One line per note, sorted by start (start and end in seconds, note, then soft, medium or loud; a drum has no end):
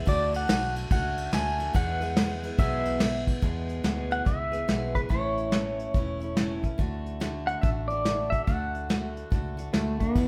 0.06 0.45 D2 medium
0.06 0.33 D3 medium
0.06 0.33 A3 medium
0.06 0.33 D4 loud
0.06 0.31 F#4 loud
0.06 0.35 D5 medium
0.06 kick loud
0.06 ride medium
0.32 0.47 A3 soft
0.32 0.48 D4 soft
0.32 0.48 F#4 medium
0.32 0.74 F#5 loud
0.32 ride medium
0.48 0.84 B1 medium
0.48 0.90 D3 medium
0.48 0.89 A3 medium
0.48 0.90 D4 medium
0.48 0.91 F#4 medium
0.48 snare loud
0.48 ride loud
0.76 ride medium
0.91 1.26 C#2 medium
0.91 1.31 A3 medium
0.91 1.33 D4 medium
0.91 1.33 F#4 medium
0.91 1.35 F#5 medium
0.91 kick loud
0.91 ride loud
1.18 ride medium
1.32 1.68 D2 medium
1.32 1.59 D3 medium
1.32 1.59 A3 medium
1.32 1.59 D4 medium
1.32 1.58 F#4 medium
1.32 1.73 G#5 loud
1.32 snare loud
1.32 ride medium
1.59 1.75 A3 soft
1.59 1.75 D4 soft
1.59 1.74 F#4 medium
1.59 ride medium
1.74 2.01 E2 medium
1.74 2.50 E2 medium
1.74 2.01 B2 medium
1.74 2.01 E3 medium
1.74 2.02 G#3 medium
1.74 2.01 B3 medium
1.74 1.99 G#4 medium
1.74 2.55 F#5 loud
1.74 kick loud
1.74 ride medium
2.01 2.15 E3 soft
2.01 2.16 G#3 medium
2.01 2.17 B3 medium
2.01 2.16 G#4 medium
2.01 ride medium
2.17 2.43 E3 medium
2.17 2.44 G#3 medium
2.17 2.43 B3 medium
2.17 2.42 G#4 medium
2.17 snare loud
2.17 ride medium
2.43 2.58 E3 soft
2.43 2.58 G#3 soft
2.43 2.59 B3 medium
2.43 2.58 G#4 medium
2.43 ride medium
2.58 3.34 B1 medium
2.58 3.00 E2 medium
2.58 3.01 B2 medium
2.58 2.98 E3 medium
2.58 3.00 G#3 medium
2.58 3.00 B3 medium
2.58 3.01 G#4 loud
2.58 3.24 E5 medium
2.58 kick loud
2.58 ride medium
2.85 ride medium
3.00 3.41 E3 medium
3.00 3.42 G#3 medium
3.00 3.42 B3 medium
3.00 3.42 G#4 medium
3.00 snare loud
3.00 ride medium
3.27 kick medium
3.27 ride medium
3.42 3.82 E2 medium
3.42 3.80 E2 medium
3.42 3.83 B2 medium
3.42 3.84 E3 medium
3.42 3.83 G#3 medium
3.42 3.84 B3 medium
3.42 3.84 G#4 medium
3.42 kick medium
3.42 closed hi-hat medium
3.69 closed hi-hat medium
3.84 4.20 D2 medium
3.84 4.26 E2 medium
3.84 4.26 B2 medium
3.84 4.25 E3 medium
3.84 4.26 G#3 medium
3.84 4.26 B3 medium
3.84 4.27 G#4 medium
3.84 snare loud
3.84 closed hi-hat medium
4.11 4.26 F#5 medium
4.11 closed hi-hat medium
4.25 4.62 C#2 medium
4.25 4.53 E3 medium
4.25 4.53 G#3 medium
4.25 4.52 B3 medium
4.25 4.51 G#4 medium
4.25 4.98 E5 medium
4.25 kick loud
4.25 closed hi-hat medium
4.52 4.68 E3 soft
4.52 4.68 G#3 soft
4.52 4.68 B3 soft
4.52 4.68 G#4 medium
4.52 closed hi-hat medium
4.68 5.04 B1 medium
4.68 4.95 E2 medium
4.68 4.95 B2 medium
4.68 4.96 E3 medium
4.68 4.96 G#3 medium
4.68 4.95 B3 medium
4.68 4.93 G#4 medium
4.68 snare loud
4.68 closed hi-hat medium
4.95 5.08 E3 soft
4.95 5.09 G#3 soft
4.95 5.10 B3 soft
4.95 5.10 G#4 soft
4.95 5.00 B4 medium
4.95 kick medium
4.95 closed hi-hat medium
5.09 5.86 A1 medium
5.09 5.50 A2 medium
5.09 5.51 E3 medium
5.09 5.52 A3 medium
5.09 5.52 C#4 medium
5.09 5.53 E4 medium
5.09 6.59 C#5 medium
5.09 kick medium
5.09 closed hi-hat medium
5.38 closed hi-hat medium
5.51 5.94 A2 medium
5.51 5.93 E3 medium
5.51 5.95 A3 medium
5.51 5.95 C#4 medium
5.51 5.95 E4 medium
5.51 snare loud
5.51 closed hi-hat medium
5.79 closed hi-hat medium
5.94 6.70 E1 medium
5.94 6.21 E3 medium
5.94 6.22 A3 medium
5.94 6.21 C#4 medium
5.94 6.19 E4 medium
5.94 kick loud
5.94 closed hi-hat medium
6.20 6.36 A3 soft
6.20 6.37 C#4 medium
6.20 6.36 E4 medium
6.20 closed hi-hat medium
6.37 6.64 A2 medium
6.37 6.64 E3 medium
6.37 6.64 A3 medium
6.37 6.64 C#4 medium
6.37 6.62 E4 medium
6.37 snare loud
6.37 closed hi-hat medium
6.63 6.78 A3 soft
6.63 6.79 C#4 soft
6.63 6.79 E4 medium
6.63 kick medium
6.63 closed hi-hat medium
6.78 7.54 D2 medium
6.78 7.19 D3 medium
6.78 7.19 A3 medium
6.78 7.20 D4 medium
6.78 7.21 F#4 medium
6.78 kick medium
6.78 closed hi-hat medium
7.06 closed hi-hat medium
7.20 7.61 D3 medium
7.20 7.62 A3 medium
7.20 7.63 D4 medium
7.20 7.64 F#4 medium
7.20 snare loud
7.20 closed hi-hat medium
7.47 7.61 F#5 medium
7.47 closed hi-hat medium
7.61 8.39 A1 medium
7.61 7.89 D3 medium
7.61 7.90 A3 medium
7.61 7.90 D4 medium
7.61 7.89 F#4 medium
7.61 7.69 E5 medium
7.61 kick loud
7.61 closed hi-hat medium
7.88 8.05 D4 soft
7.88 8.05 F#4 soft
7.88 8.32 D5 medium
7.88 closed hi-hat medium
7.93 8.04 A3 soft
8.05 8.32 D3 medium
8.05 8.32 A3 medium
8.05 8.32 D4 medium
8.05 8.30 F#4 medium
8.05 snare loud
8.05 closed hi-hat medium
8.30 8.47 D4 soft
8.30 8.47 F#4 soft
8.30 8.44 E5 medium
8.30 kick medium
8.30 closed hi-hat medium
8.35 8.47 A3 soft
8.44 9.23 D2 medium
8.44 8.88 D3 medium
8.44 8.89 A3 medium
8.44 8.89 D4 medium
8.44 9.68 F#5 medium
8.44 kick medium
8.44 closed hi-hat medium
8.49 8.90 F#4 medium
8.75 closed hi-hat medium
8.89 9.29 D3 medium
8.89 9.30 A3 medium
8.89 9.32 D4 medium
8.89 9.32 F#4 medium
8.89 snare loud
8.89 closed hi-hat medium
9.17 closed hi-hat medium
9.30 9.67 C#2 medium
9.30 9.58 D3 medium
9.30 9.58 A3 medium
9.30 9.58 D4 medium
9.30 9.56 F#4 medium
9.30 kick loud
9.30 closed hi-hat medium
9.57 9.73 A3 soft
9.57 9.73 D4 medium
9.57 9.73 F#4 medium
9.57 closed hi-hat medium
9.73 10.10 D2 medium
9.73 10.00 D3 medium
9.73 10.00 A3 medium
9.73 10.01 A3 medium
9.73 10.01 D4 medium
9.73 9.99 F#4 medium
9.73 snare loud
9.73 closed hi-hat medium
10.00 10.16 A3 soft
10.00 10.28 B3 medium
10.00 10.16 D4 soft
10.00 10.15 F#4 medium
10.00 kick medium
10.00 closed hi-hat medium
10.15 10.28 E2 medium
10.15 10.28 B2 medium
10.15 10.28 E3 medium
10.15 10.28 G#3 medium
10.15 10.28 B3 medium
10.15 10.28 E4 medium
10.15 kick medium
10.15 crash medium